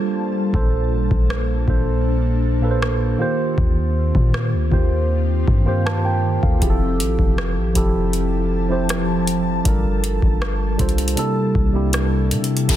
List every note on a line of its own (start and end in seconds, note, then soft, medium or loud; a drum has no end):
0.00 0.51 G3 medium
0.00 0.56 G3 medium
0.00 0.51 A#3 medium
0.00 0.56 D4 medium
0.00 0.51 F4 medium
0.00 0.55 F4 medium
0.00 0.55 A4 medium
0.00 0.55 C5 medium
0.00 0.50 A5 medium
0.52 0.94 A#1 loud
0.52 1.33 A#2 medium
0.52 1.33 A#3 medium
0.52 3.17 A#3 medium
0.52 0.60 C#4 medium
0.52 3.17 D4 medium
0.52 3.17 A4 medium
0.52 1.34 A4 medium
0.52 1.34 C5 medium
0.52 kick loud
0.60 1.37 D4 medium
0.92 1.10 A1 medium
1.11 1.66 A#1 loud
1.11 kick medium
1.30 cross-stick loud
1.66 3.16 A#1 medium
1.66 2.33 A#2 medium
1.66 2.34 A#3 medium
1.66 2.34 D4 medium
1.66 2.35 A4 medium
1.66 2.35 C5 medium
1.66 kick medium
2.61 3.19 A#2 medium
2.61 3.18 A#3 medium
2.61 3.20 D4 medium
2.61 3.20 A4 medium
2.61 2.70 B4 medium
2.71 3.20 C5 medium
2.82 cross-stick loud
3.18 4.40 D#3 medium
3.18 6.58 D#3 medium
3.18 4.41 A#3 medium
3.18 6.58 C4 medium
3.18 4.41 F4 medium
3.18 6.58 F4 medium
3.18 9.61 G4 medium
3.18 4.42 G4 medium
3.18 4.42 C5 medium
3.58 4.13 D#2 loud
3.58 kick loud
4.15 4.55 A#2 loud
4.15 kick medium
4.34 cross-stick loud
4.53 4.71 D2 loud
4.70 5.45 D#2 medium
4.70 5.37 D#3 medium
4.70 5.37 A#3 medium
4.70 5.38 F4 medium
4.70 5.38 G4 medium
4.70 5.39 C5 medium
4.70 kick medium
5.48 6.39 G2 loud
5.48 kick medium
5.65 6.32 D#3 medium
5.65 6.32 A#3 medium
5.65 6.33 F4 medium
5.65 6.33 G4 medium
5.65 5.85 C5 medium
5.86 6.04 C5 medium
5.86 6.04 A5 medium
5.86 cross-stick loud
6.05 6.41 A#4 medium
6.05 6.41 G5 medium
6.43 6.61 D#2 loud
6.43 6.69 A4 medium
6.43 6.79 F5 medium
6.43 kick medium
6.60 7.01 F1 loud
6.60 7.40 F3 medium
6.60 9.62 F3 medium
6.60 7.41 C4 medium
6.60 7.41 E4 medium
6.60 9.62 E4 medium
6.60 7.41 G4 medium
6.60 6.69 G#4 medium
6.60 11.13 A5 medium
6.60 kick loud
6.60 closed hi-hat medium
6.70 7.45 A4 medium
7.00 7.18 A1 loud
7.00 closed hi-hat medium
7.19 7.58 F1 loud
7.19 kick medium
7.38 cross-stick loud
7.56 7.75 A1 loud
7.74 9.62 F1 loud
7.74 8.41 F3 medium
7.74 8.41 C4 medium
7.74 8.42 E4 medium
7.74 8.42 G4 medium
7.74 8.43 A4 medium
7.74 kick medium
7.74 closed hi-hat medium
8.13 closed hi-hat medium
8.69 9.36 F3 medium
8.69 9.36 C4 medium
8.69 9.37 E4 medium
8.69 9.37 G4 medium
8.69 9.37 C5 medium
8.89 cross-stick loud
8.89 closed hi-hat medium
9.27 closed hi-hat medium
9.64 10.20 G1 loud
9.64 10.44 G3 medium
9.64 11.16 G3 medium
9.64 11.16 A#3 medium
9.64 10.44 D4 medium
9.64 11.16 F4 medium
9.64 10.45 F4 medium
9.64 10.45 A4 medium
9.64 10.46 A#4 medium
9.64 kick loud
9.64 closed hi-hat medium
10.04 closed hi-hat medium
10.22 10.77 G1 loud
10.22 kick medium
10.42 cross-stick loud
10.78 11.16 C2 loud
10.78 11.15 G3 medium
10.78 11.16 D4 medium
10.78 11.17 F4 medium
10.78 11.18 A4 medium
10.78 11.18 C5 medium
10.78 kick medium
10.78 closed hi-hat soft
10.89 closed hi-hat soft
10.98 closed hi-hat medium
11.08 closed hi-hat medium
11.15 11.62 C3 medium
11.15 12.68 C3 medium
11.15 11.62 G3 medium
11.15 11.63 A#3 medium
11.15 12.68 A#3 medium
11.15 11.63 D4 medium
11.15 12.68 D4 medium
11.15 12.68 E4 medium
11.15 11.63 E4 medium
11.15 12.68 A4 medium
11.15 11.64 A4 loud
11.15 closed hi-hat medium
11.55 12.33 C2 loud
11.55 kick medium
11.73 12.40 C3 medium
11.73 12.40 G3 medium
11.73 12.40 A#3 medium
11.73 12.41 D4 medium
11.73 12.41 E4 medium
11.73 12.41 G4 medium
11.93 cross-stick loud
11.93 closed hi-hat medium
12.31 12.68 C3 medium
12.31 closed hi-hat medium
12.44 closed hi-hat medium
12.57 closed hi-hat soft
12.67 12.76 F1 loud
12.67 12.76 F3 medium
12.67 12.76 C4 medium
12.67 12.76 E4 medium
12.67 12.76 G4 medium
12.67 12.76 A4 medium
12.67 12.76 A4 loud
12.67 kick loud
12.67 closed hi-hat medium
12.67 crash loud
12.67 downlifter medium